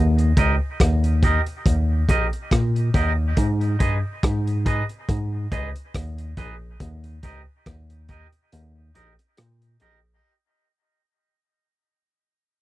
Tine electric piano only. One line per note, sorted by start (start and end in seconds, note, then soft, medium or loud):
0.00 0.32 D#2 loud
0.38 0.58 C#2 medium
0.80 1.38 D#2 medium
1.67 2.03 D#2 medium
2.09 2.30 A#1 medium
2.52 2.89 A#2 medium
2.95 3.32 D#2 medium
3.38 3.75 G#2 loud
3.81 4.01 G2 medium
4.23 4.81 G#2 medium
5.09 5.46 G#2 medium
5.53 5.73 C#2 medium
5.95 6.32 D#2 medium
6.38 6.75 A#1 medium
6.81 7.18 D#2 medium
7.24 7.44 C#2 medium
7.67 8.25 D#2 medium
8.53 8.90 D#2 medium
8.96 9.16 A#1 medium
9.39 9.76 A#2 medium
9.82 10.19 A#1 medium